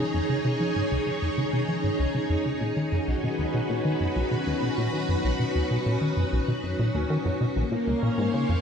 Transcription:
Already playing: C#4 D#4 G#4 C#5
0.14 F2
0.30 C#3
0.45 C3
0.60 F3
0.76 G#2
0.91 C#2
1.06 C#3
1.22 F2
1.38 C#3
1.53 C3
1.68 F3
1.84 G#2
1.99 C#2
2.15 C#3
2.30 F2
2.45 C#3
2.61 A#2
2.77 D#3
2.87 F#4
2.92 F#2
3.08 B1
3.16 B4
3.23 B2
3.38 D#2
3.54 B2
3.70 A#2
3.85 D#3
4.00 F#2
4.16 B1
4.31 B2
4.47 D#2
4.62 B2
4.78 A#2
4.93 D#3
5.09 F#2
5.25 B1
5.40 B2
5.55 D#2
5.71 B2
5.86 A#2
6.01 D#3
6.17 F#2
6.33 B1
6.48 B2
6.64 F#2
6.79 A#2
6.95 D#2
7.10 D#3
7.25 F#2
7.41 B2
7.56 A#1 A#3
7.71 A#2 A#4
7.87 C#2
7.93 F5
8.03 A#2 C5
8.10 C#5
8.18 G#2
8.34 C#3
8.49 F2

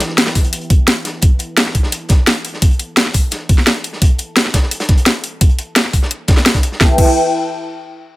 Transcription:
Already playing: E4 B4 E5 G5
0.00 closed hi-hat
0.08 snare
0.18 snare, closed hi-hat
0.27 snare, closed hi-hat
0.35 kick, snare, open hi-hat
0.44 closed hi-hat
0.53 closed hi-hat
0.61 closed hi-hat
0.70 kick, closed hi-hat
0.88 snare, closed hi-hat
1.05 snare, closed hi-hat
1.22 A5, kick, closed hi-hat
1.39 closed hi-hat
1.57 snare, closed hi-hat
1.66 snare
1.75 kick, closed hi-hat
1.83 snare
1.92 closed hi-hat
2.09 kick, snare, closed hi-hat
2.27 snare, closed hi-hat
2.45 closed hi-hat
2.54 snare
2.62 kick, closed hi-hat
2.71 closed hi-hat
2.79 closed hi-hat
2.96 snare, closed hi-hat
3.06 snare
3.13 kick, closed hi-hat, open hi-hat
3.31 snare, closed hi-hat
3.49 kick, closed hi-hat
3.58 snare
3.67 snare, closed hi-hat
3.75 snare
3.84 closed hi-hat
3.93 snare
4.02 kick, closed hi-hat
4.18 closed hi-hat
4.36 snare, closed hi-hat
4.45 snare
4.54 kick, snare, closed hi-hat
4.63 snare
4.71 closed hi-hat
4.80 snare, closed hi-hat
4.89 kick, snare, closed hi-hat
4.97 closed hi-hat
5.06 snare, closed hi-hat
5.24 closed hi-hat
5.41 kick, closed hi-hat
5.49 closed hi-hat
5.59 closed hi-hat
5.76 snare, closed hi-hat
5.84 snare
5.93 kick, closed hi-hat, open hi-hat
6.02 snare
6.11 closed hi-hat
6.28 kick, snare, closed hi-hat
6.36 snare, closed hi-hat
6.45 snare, closed hi-hat
6.54 kick, snare, closed hi-hat
6.63 closed hi-hat
6.72 snare
6.81 E4 B4 E5 G5, kick, snare
6.98 kick, crash

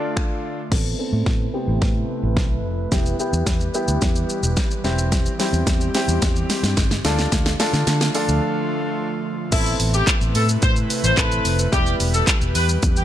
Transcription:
Already playing: D3 A3 D4 F4 A4 D5
0.17 finger snap, kick
0.71 A1 C3 A3 B3 C4 E4 A4 B4, kick, snare, crash
0.99 B3 C4 A4
1.13 A2
1.26 A2, kick, snare
1.54 B3 C4 G4
1.68 A1
1.82 A2, kick, snare
2.23 A1
2.37 B1, kick, snare
2.64 F1
2.91 E1 E3 G3 B3 E4 G4, kick, snare, shaker
3.06 shaker
3.19 B3 E4 G4, shaker
3.33 E2, shaker
3.47 E2, kick, snare, shaker
3.60 shaker
3.74 B3 E4 G4, shaker
3.88 D2, shaker
4.02 E2, kick, snare, shaker
4.16 shaker
4.29 shaker
4.43 E1, shaker
4.57 kick, snare, shaker
4.71 shaker
4.84 E1 G3 C4 E4 G4, snare, shaker
4.98 shaker
5.12 kick, snare, closed hi-hat, shaker
5.26 shaker
5.39 C4 E4 G4, snare, open hi-hat, shaker
5.53 E2, shaker
5.67 E2, kick, snare, closed hi-hat, shaker
5.81 shaker
5.94 C4 E4 G4, snare, open hi-hat, shaker
6.08 E2, shaker
6.22 E2, kick, snare, closed hi-hat, shaker
6.36 shaker
6.50 snare, open hi-hat, shaker
6.63 G2, snare, shaker
6.77 G1, kick, snare, closed hi-hat, shaker
6.91 snare, shaker
7.05 D2 D3 F3 A3 D4 F4 A4, snare, open hi-hat, shaker
7.19 snare, shaker
7.32 D2, kick, snare, closed hi-hat, shaker
7.46 snare, shaker
7.59 D4 F4 A4, snare, open hi-hat, shaker
7.73 D3, snare, shaker
7.87 D3, snare, closed hi-hat, shaker
8.01 snare, shaker
8.15 D4 F4 A4, open hi-hat, shaker
8.28 D2, shaker
9.52 A1 C3 A3 B3 C4 E4 A4 B4, kick, closed hi-hat, crash, shaker
9.66 shaker
9.80 A1, open hi-hat, shaker
9.94 G4, shaker
10.07 kick, clap, closed hi-hat, shaker
10.21 A1, shaker
10.35 A2 A4, open hi-hat, shaker
10.49 shaker
10.62 A2 C5, kick, closed hi-hat, shaker
10.76 shaker
10.90 open hi-hat, shaker
11.03 A1 C5, shaker
11.17 C4 E4 A4 B4, kick, clap, closed hi-hat, shaker
11.32 shaker
11.45 F1, open hi-hat, shaker
11.59 shaker
11.72 E1 E3 G3 B3 E4 G4, kick, closed hi-hat, shaker
11.86 shaker
12.00 E1, open hi-hat, shaker
12.14 A4, shaker
12.27 kick, clap, closed hi-hat, shaker
12.41 E1, shaker
12.55 E2 B4, open hi-hat, shaker
12.69 shaker
12.83 E2, kick, closed hi-hat, shaker
12.96 G4, shaker

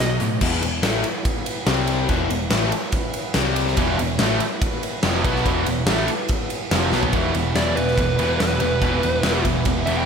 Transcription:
Already playing: D#5
0.00 B1 B2 F#3
0.20 A2 B2 F#3, closed hi-hat
0.39 E1 E2 B2 E4 B4 F#5, kick, crash
0.43 E3
0.62 E1 E2 B2, ride
0.82 A1 A2 E3 A3, snare, ride
1.04 ride
1.25 kick, ride
1.46 ride
1.67 C2 C3 G3 C4, snare, ride
1.87 ride
2.08 E1 E2 B2 E3 E4 B4 F#5, kick, ride
2.30 E1 E2 B2, ride
2.50 A1 A2 E3 A3, snare, ride
2.72 ride
2.92 kick, ride
3.14 ride
3.34 C2 C3 G3 C4, snare, ride
3.56 ride
3.67 snare
3.77 E1 E2 B2 E3 E4 B4 F#5, kick, ride
3.97 E1 E2 B2, ride
4.18 A1 A2 E3 A3, snare, ride
4.40 ride
4.62 kick, ride
4.83 ride
5.03 F1 F2 C3 F3, snare, ride
5.25 B1 B2 F#3 B3, kick, ride
5.36 snare
5.44 E1 E2 B2 E3, kick, ride
5.66 E1 E2 B2, ride
5.87 A1 A2 E3 A3, snare, ride
6.08 ride
6.28 kick, ride
6.50 ride
6.71 F1 F2 C3 F3, snare, ride
6.92 B1 B2 F#3 B3, snare
7.03 floor tom
7.12 E1 E2 B2 E3 G3 B3 E4 B4 F#5, kick, ride
7.16 E4
7.34 E1 E2 B2, ride
7.55 E1 E2 B2 E3 D5, snare, ride
7.76 E1 E2 B2 B4, ride
7.88 snare
7.98 E1 E2 B2, kick, ride
8.18 E1 E2 B2 E3, ride
8.40 E1 E2 B2 B4, snare, ride
8.59 E1 E2 B2 E3 G3 B3 E4 B4, ride
8.82 E1 E2 B2 E3 G3 B3 E4, kick, ride
9.03 E1 E2 B2, ride
9.23 E1 E2 B2 E3, snare, ride
9.45 E1 E2 B2, kick, ride
9.65 E1 E2 B2, kick, ride
9.86 E1 E2 B2 E3 E5, ride
9.98 G5

